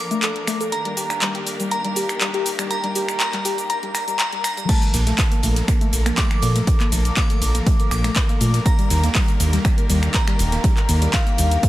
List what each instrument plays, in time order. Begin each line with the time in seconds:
Already playing: string section F3 A#3 D4 A4 A#4, synth bell D6
0.11 synth pluck A3, closed hi-hat, shaker
0.22 synth pluck A4, clap, closed hi-hat, shaker
0.36 closed hi-hat
0.47 synth pluck A3, finger snap, open hi-hat, shaker
0.61 synth pluck A4, closed hi-hat, shaker
0.72 string section D#3 G4, synth bell A#5, closed hi-hat, shaker
0.85 synth pluck G3, closed hi-hat
0.97 synth pluck G4, open hi-hat, shaker
1.10 finger snap, closed hi-hat, shaker
1.22 synth pluck G3, clap, closed hi-hat, shaker
1.35 synth pluck G4, closed hi-hat
1.47 open hi-hat, shaker
1.60 synth pluck G3, closed hi-hat, shaker
1.71 synth bell A#5, closed hi-hat, shaker
1.85 synth pluck G3, closed hi-hat
1.96 synth pluck G4, open hi-hat, shaker
2.09 finger snap, closed hi-hat, shaker
2.21 synth pluck G3, clap, closed hi-hat, shaker
2.34 synth pluck G4, closed hi-hat
2.46 open hi-hat, shaker
2.59 synth pluck G3, finger snap, closed hi-hat, shaker
2.71 synth bell A#5, closed hi-hat, shaker
2.84 synth pluck G3, closed hi-hat
2.95 synth pluck G4, open hi-hat, shaker
3.08 finger snap, closed hi-hat, shaker
3.20 synth bell A#5, clap, closed hi-hat, shaker
3.33 synth pluck G3, clap, closed hi-hat
3.45 synth pluck G4, open hi-hat, shaker
3.58 closed hi-hat, shaker
3.70 synth bell A#5, closed hi-hat, shaker
3.83 synth pluck G3, closed hi-hat
3.94 synth bell A#5, finger snap, open hi-hat, shaker
4.08 synth pluck G3, closed hi-hat, shaker
4.19 synth bell A#5, clap, closed hi-hat, shaker
4.33 synth pluck G3, closed hi-hat
4.44 synth bell A#5, finger snap, open hi-hat, shaker
4.57 synth pluck G3, closed hi-hat, shaker
4.69 string section D3 F3 A#3 A4 A#4, synth pluck A3, synth bell A5, kick, closed hi-hat, crash, ride, shaker
4.82 closed hi-hat, shaker
4.93 analog synth bass A#1, synth pluck A#3, snare, closed hi-hat, open hi-hat, ride, shaker
5.07 synth pluck A3, snare, closed hi-hat, shaker
5.18 kick, snare, clap, closed hi-hat, open hi-hat, ride, shaker
5.32 synth pluck A#3, closed hi-hat, shaker
5.43 analog synth bass A#1, synth pluck A3, closed hi-hat, open hi-hat, ride, shaker
5.56 snare, closed hi-hat, shaker
5.68 synth pluck A#3, finger snap, kick, closed hi-hat, ride, shaker
5.81 synth pluck A3, closed hi-hat, shaker
5.92 analog synth bass A#1, closed hi-hat, open hi-hat, ride, shaker
6.06 synth pluck A#3, finger snap, closed hi-hat, shaker
6.17 synth pluck A3, synth bell D6, kick, snare, clap, closed hi-hat, ride, shaker
6.31 finger snap, closed hi-hat, shaker
6.42 analog synth bass A#2, synth pluck A#3, closed hi-hat, open hi-hat, ride, shaker
6.55 synth pluck A3, snare, closed hi-hat, shaker
6.67 kick, closed hi-hat, ride, shaker
6.80 synth pluck A#3, clap, closed hi-hat, shaker
6.92 analog synth bass A#1, synth pluck A3, closed hi-hat, open hi-hat, ride, shaker
7.05 closed hi-hat, shaker
7.17 synth pluck A#3, synth bell D6, kick, snare, clap, closed hi-hat, ride, shaker
7.30 synth pluck A3, closed hi-hat, shaker
7.42 analog synth bass A#1, closed hi-hat, open hi-hat, ride, shaker
7.55 synth pluck A#3, closed hi-hat, shaker
7.66 synth pluck A3, kick, closed hi-hat, ride, shaker
7.80 closed hi-hat, shaker
7.91 analog synth bass A#1, synth pluck A#3, synth bell D6, finger snap, closed hi-hat, open hi-hat, ride, shaker
8.04 synth pluck A3, finger snap, snare, closed hi-hat, shaker
8.16 kick, snare, clap, closed hi-hat, ride, shaker
8.29 synth pluck A#3, closed hi-hat, shaker
8.40 analog synth bass A#2, synth pluck A3, closed hi-hat, open hi-hat, ride, shaker
8.54 snare, closed hi-hat, shaker
8.65 string section D#3 G4, synth pluck A#3, synth bell A#5, kick, closed hi-hat, ride, shaker
8.79 synth pluck G3, closed hi-hat, shaker
8.90 analog synth bass D#2, snare, closed hi-hat, open hi-hat, ride, shaker
9.03 synth pluck A#3, snare, closed hi-hat, shaker
9.15 synth pluck G3, kick, snare, clap, closed hi-hat, open hi-hat, ride, shaker
9.28 closed hi-hat, shaker
9.40 analog synth bass D#2, synth pluck A#3, closed hi-hat, open hi-hat, ride, shaker
9.53 synth pluck G3, snare, closed hi-hat, shaker
9.64 finger snap, kick, closed hi-hat, ride, shaker
9.78 synth pluck A#3, closed hi-hat, shaker
9.90 analog synth bass D#2, synth pluck G3, closed hi-hat, open hi-hat, ride, shaker
10.03 finger snap, closed hi-hat, shaker
10.14 synth pluck A#3, synth bell A#5, kick, snare, clap, closed hi-hat, ride, shaker
10.27 synth pluck G3, finger snap, closed hi-hat, shaker
10.39 analog synth bass D#1, closed hi-hat, open hi-hat, ride, shaker
10.52 synth pluck A#3, snare, closed hi-hat, shaker
10.64 synth pluck G3, kick, closed hi-hat, ride, shaker
10.77 clap, closed hi-hat, shaker
10.89 analog synth bass D#2, synth pluck A#3, closed hi-hat, open hi-hat, ride, shaker
11.02 synth pluck G3, closed hi-hat, shaker
11.13 synth bell F5, kick, snare, clap, closed hi-hat, ride, shaker
11.27 synth pluck A#3, closed hi-hat, shaker
11.38 analog synth bass D#2, synth pluck G3, closed hi-hat, open hi-hat, ride, shaker
11.51 closed hi-hat, shaker
11.63 synth pluck A#3, kick, closed hi-hat, ride, shaker